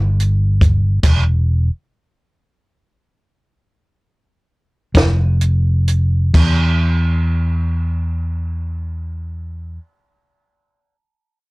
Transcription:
0, 0, Header, 1, 3, 480
1, 0, Start_track
1, 0, Key_signature, 1, "minor"
1, 0, Tempo, 846262
1, 586, Time_signature, 12, 3, 24, 8
1, 1554, Tempo, 881057
1, 2514, Tempo, 923077
1, 3474, Tempo, 947867
1, 6086, End_track
2, 0, Start_track
2, 0, Title_t, "Fingered electric bass"
2, 0, Program_c, 0, 33
2, 0, Note_on_c, 0, 31, 80
2, 566, Note_off_c, 0, 31, 0
2, 583, Note_on_c, 0, 28, 65
2, 957, Note_off_c, 0, 28, 0
2, 2744, Note_on_c, 0, 29, 79
2, 3449, Note_off_c, 0, 29, 0
2, 3469, Note_on_c, 0, 40, 75
2, 5209, Note_off_c, 0, 40, 0
2, 6086, End_track
3, 0, Start_track
3, 0, Title_t, "Drums"
3, 112, Note_on_c, 9, 42, 57
3, 169, Note_off_c, 9, 42, 0
3, 348, Note_on_c, 9, 36, 79
3, 351, Note_on_c, 9, 42, 64
3, 405, Note_off_c, 9, 36, 0
3, 407, Note_off_c, 9, 42, 0
3, 585, Note_on_c, 9, 42, 77
3, 585, Note_on_c, 9, 49, 75
3, 586, Note_on_c, 9, 36, 98
3, 642, Note_off_c, 9, 42, 0
3, 642, Note_off_c, 9, 49, 0
3, 643, Note_off_c, 9, 36, 0
3, 2747, Note_on_c, 9, 36, 86
3, 2748, Note_on_c, 9, 42, 75
3, 2758, Note_on_c, 9, 38, 100
3, 2799, Note_off_c, 9, 36, 0
3, 2800, Note_off_c, 9, 42, 0
3, 2810, Note_off_c, 9, 38, 0
3, 2987, Note_on_c, 9, 42, 52
3, 3039, Note_off_c, 9, 42, 0
3, 3229, Note_on_c, 9, 42, 64
3, 3281, Note_off_c, 9, 42, 0
3, 3471, Note_on_c, 9, 36, 91
3, 3474, Note_on_c, 9, 49, 73
3, 3522, Note_off_c, 9, 36, 0
3, 3524, Note_off_c, 9, 49, 0
3, 6086, End_track
0, 0, End_of_file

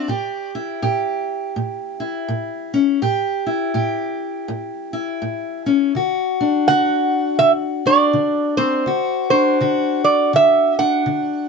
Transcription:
0, 0, Header, 1, 3, 480
1, 0, Start_track
1, 0, Tempo, 730816
1, 72, Time_signature, 4, 2, 24, 8
1, 7544, End_track
2, 0, Start_track
2, 0, Title_t, "Resonator guitar played with a steel bar"
2, 0, Program_c, 0, 25
2, 0, Note_on_c, 0, 76, 82
2, 27, Note_off_c, 0, 76, 0
2, 27, Note_on_c, 0, 74, 82
2, 332, Note_off_c, 0, 74, 0
2, 4386, Note_on_c, 0, 78, 96
2, 4850, Note_off_c, 0, 78, 0
2, 4852, Note_on_c, 0, 76, 93
2, 4932, Note_off_c, 0, 76, 0
2, 5167, Note_on_c, 0, 74, 89
2, 5628, Note_off_c, 0, 74, 0
2, 5630, Note_on_c, 0, 72, 82
2, 6102, Note_off_c, 0, 72, 0
2, 6110, Note_on_c, 0, 72, 81
2, 6595, Note_off_c, 0, 72, 0
2, 6597, Note_on_c, 0, 74, 78
2, 6776, Note_off_c, 0, 74, 0
2, 6803, Note_on_c, 0, 76, 89
2, 7083, Note_off_c, 0, 76, 0
2, 7086, Note_on_c, 0, 78, 86
2, 7544, Note_off_c, 0, 78, 0
2, 7544, End_track
3, 0, Start_track
3, 0, Title_t, "Steel-string acoustic guitar"
3, 0, Program_c, 1, 25
3, 53, Note_on_c, 1, 45, 72
3, 61, Note_on_c, 1, 67, 67
3, 361, Note_on_c, 1, 64, 58
3, 502, Note_off_c, 1, 45, 0
3, 541, Note_off_c, 1, 67, 0
3, 541, Note_on_c, 1, 45, 74
3, 543, Note_on_c, 1, 67, 66
3, 986, Note_off_c, 1, 45, 0
3, 1025, Note_on_c, 1, 45, 74
3, 1305, Note_off_c, 1, 64, 0
3, 1313, Note_on_c, 1, 64, 59
3, 1467, Note_off_c, 1, 45, 0
3, 1500, Note_on_c, 1, 45, 70
3, 1797, Note_on_c, 1, 61, 58
3, 1944, Note_off_c, 1, 45, 0
3, 1958, Note_off_c, 1, 67, 0
3, 1961, Note_off_c, 1, 64, 0
3, 1964, Note_off_c, 1, 61, 0
3, 1982, Note_on_c, 1, 45, 73
3, 1985, Note_on_c, 1, 67, 66
3, 2276, Note_on_c, 1, 64, 57
3, 2425, Note_off_c, 1, 45, 0
3, 2453, Note_off_c, 1, 67, 0
3, 2457, Note_on_c, 1, 45, 72
3, 2461, Note_on_c, 1, 67, 65
3, 2902, Note_off_c, 1, 45, 0
3, 2944, Note_on_c, 1, 45, 71
3, 3230, Note_off_c, 1, 64, 0
3, 3238, Note_on_c, 1, 64, 57
3, 3385, Note_off_c, 1, 45, 0
3, 3427, Note_on_c, 1, 45, 65
3, 3719, Note_on_c, 1, 61, 58
3, 3867, Note_off_c, 1, 45, 0
3, 3878, Note_off_c, 1, 67, 0
3, 3883, Note_off_c, 1, 64, 0
3, 3884, Note_off_c, 1, 61, 0
3, 3907, Note_on_c, 1, 50, 69
3, 3917, Note_on_c, 1, 66, 61
3, 4207, Note_on_c, 1, 62, 53
3, 4347, Note_off_c, 1, 50, 0
3, 4387, Note_on_c, 1, 50, 70
3, 4398, Note_off_c, 1, 66, 0
3, 4401, Note_on_c, 1, 66, 62
3, 4827, Note_off_c, 1, 50, 0
3, 4855, Note_on_c, 1, 50, 70
3, 5152, Note_off_c, 1, 62, 0
3, 5160, Note_on_c, 1, 62, 55
3, 5302, Note_off_c, 1, 50, 0
3, 5342, Note_on_c, 1, 50, 68
3, 5636, Note_on_c, 1, 60, 58
3, 5786, Note_off_c, 1, 50, 0
3, 5804, Note_off_c, 1, 60, 0
3, 5807, Note_off_c, 1, 62, 0
3, 5819, Note_on_c, 1, 50, 70
3, 5820, Note_off_c, 1, 66, 0
3, 5828, Note_on_c, 1, 66, 64
3, 6114, Note_on_c, 1, 62, 54
3, 6266, Note_off_c, 1, 50, 0
3, 6306, Note_off_c, 1, 66, 0
3, 6309, Note_on_c, 1, 50, 72
3, 6313, Note_on_c, 1, 66, 61
3, 6751, Note_off_c, 1, 50, 0
3, 6786, Note_on_c, 1, 50, 74
3, 7078, Note_off_c, 1, 62, 0
3, 7087, Note_on_c, 1, 62, 56
3, 7231, Note_off_c, 1, 50, 0
3, 7264, Note_on_c, 1, 50, 68
3, 7544, Note_off_c, 1, 50, 0
3, 7544, Note_off_c, 1, 62, 0
3, 7544, Note_off_c, 1, 66, 0
3, 7544, End_track
0, 0, End_of_file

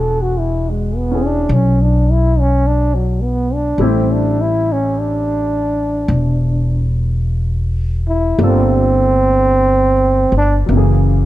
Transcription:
0, 0, Header, 1, 4, 480
1, 0, Start_track
1, 0, Tempo, 1149425
1, 1581, Time_signature, 4, 2, 24, 8
1, 4701, End_track
2, 0, Start_track
2, 0, Title_t, "Trombone"
2, 0, Program_c, 0, 57
2, 0, Note_on_c, 0, 69, 85
2, 91, Note_on_c, 0, 66, 76
2, 98, Note_off_c, 0, 69, 0
2, 162, Note_on_c, 0, 64, 73
2, 169, Note_off_c, 0, 66, 0
2, 292, Note_on_c, 0, 56, 66
2, 299, Note_off_c, 0, 64, 0
2, 403, Note_on_c, 0, 59, 90
2, 409, Note_off_c, 0, 56, 0
2, 524, Note_on_c, 0, 62, 96
2, 530, Note_off_c, 0, 59, 0
2, 642, Note_on_c, 0, 61, 80
2, 648, Note_off_c, 0, 62, 0
2, 761, Note_on_c, 0, 62, 72
2, 767, Note_off_c, 0, 61, 0
2, 885, Note_on_c, 0, 64, 92
2, 891, Note_off_c, 0, 62, 0
2, 1002, Note_on_c, 0, 61, 89
2, 1008, Note_off_c, 0, 64, 0
2, 1116, Note_on_c, 0, 62, 95
2, 1122, Note_off_c, 0, 61, 0
2, 1232, Note_on_c, 0, 54, 64
2, 1238, Note_off_c, 0, 62, 0
2, 1340, Note_on_c, 0, 59, 79
2, 1346, Note_off_c, 0, 54, 0
2, 1479, Note_on_c, 0, 62, 97
2, 1485, Note_off_c, 0, 59, 0
2, 1604, Note_on_c, 0, 60, 82
2, 1610, Note_off_c, 0, 62, 0
2, 1726, Note_on_c, 0, 62, 86
2, 1732, Note_off_c, 0, 60, 0
2, 1842, Note_on_c, 0, 64, 111
2, 1848, Note_off_c, 0, 62, 0
2, 1973, Note_on_c, 0, 61, 90
2, 1979, Note_off_c, 0, 64, 0
2, 2090, Note_on_c, 0, 62, 90
2, 2096, Note_off_c, 0, 61, 0
2, 2883, Note_off_c, 0, 62, 0
2, 3375, Note_on_c, 0, 64, 87
2, 3522, Note_on_c, 0, 60, 107
2, 3528, Note_off_c, 0, 64, 0
2, 4321, Note_off_c, 0, 60, 0
2, 4334, Note_on_c, 0, 62, 105
2, 4418, Note_off_c, 0, 62, 0
2, 4701, End_track
3, 0, Start_track
3, 0, Title_t, "Grand piano"
3, 0, Program_c, 1, 0
3, 0, Control_c, 1, 64, 127
3, 0, Note_on_c, 1, 56, 64
3, 0, Note_on_c, 1, 59, 53
3, 0, Note_on_c, 1, 62, 57
3, 0, Note_on_c, 1, 64, 49
3, 0, Note_on_c, 1, 66, 64
3, 464, Note_off_c, 1, 64, 0
3, 465, Note_on_c, 1, 61, 44
3, 471, Note_on_c, 1, 64, 41
3, 479, Note_on_c, 1, 68, 47
3, 1583, Note_off_c, 1, 61, 0
3, 1583, Note_off_c, 1, 64, 0
3, 1584, Note_on_c, 1, 55, 63
3, 1585, Note_off_c, 1, 56, 0
3, 1585, Note_off_c, 1, 59, 0
3, 1586, Note_off_c, 1, 62, 0
3, 1586, Control_c, 1, 64, 0
3, 1588, Note_off_c, 1, 66, 0
3, 1590, Note_off_c, 1, 68, 0
3, 1590, Note_on_c, 1, 57, 61
3, 1590, Note_on_c, 1, 64, 63
3, 1591, Note_on_c, 1, 60, 63
3, 1593, Note_on_c, 1, 67, 64
3, 1647, Control_c, 1, 64, 127
3, 3495, Note_off_c, 1, 55, 0
3, 3501, Note_on_c, 1, 55, 55
3, 3503, Note_on_c, 1, 58, 54
3, 3505, Note_off_c, 1, 57, 0
3, 3505, Note_off_c, 1, 60, 0
3, 3505, Note_off_c, 1, 64, 0
3, 3505, Control_c, 1, 64, 0
3, 3507, Note_off_c, 1, 67, 0
3, 3510, Note_on_c, 1, 62, 51
3, 3516, Note_on_c, 1, 65, 56
3, 3522, Note_on_c, 1, 69, 63
3, 3570, Control_c, 1, 64, 127
3, 4452, Note_on_c, 1, 54, 53
3, 4459, Note_off_c, 1, 58, 0
3, 4463, Note_off_c, 1, 55, 0
3, 4465, Note_on_c, 1, 58, 56
3, 4467, Note_off_c, 1, 62, 0
3, 4468, Control_c, 1, 64, 0
3, 4470, Note_off_c, 1, 65, 0
3, 4473, Note_off_c, 1, 69, 0
3, 4476, Note_on_c, 1, 49, 52
3, 4490, Note_on_c, 1, 52, 51
3, 4498, Note_on_c, 1, 68, 59
3, 4549, Control_c, 1, 64, 127
3, 4701, Note_off_c, 1, 49, 0
3, 4701, Note_off_c, 1, 52, 0
3, 4701, Note_off_c, 1, 54, 0
3, 4701, Note_off_c, 1, 58, 0
3, 4701, Note_off_c, 1, 68, 0
3, 4701, End_track
4, 0, Start_track
4, 0, Title_t, "Upright bass"
4, 0, Program_c, 2, 32
4, 0, Note_on_c, 2, 28, 85
4, 603, Note_off_c, 2, 28, 0
4, 623, Note_on_c, 2, 35, 87
4, 1565, Note_off_c, 2, 35, 0
4, 1578, Note_on_c, 2, 33, 81
4, 2522, Note_off_c, 2, 33, 0
4, 2540, Note_on_c, 2, 28, 93
4, 3483, Note_off_c, 2, 28, 0
4, 3501, Note_on_c, 2, 31, 92
4, 4294, Note_off_c, 2, 31, 0
4, 4309, Note_on_c, 2, 31, 76
4, 4451, Note_off_c, 2, 31, 0
4, 4463, Note_on_c, 2, 30, 94
4, 4701, Note_off_c, 2, 30, 0
4, 4701, End_track
0, 0, End_of_file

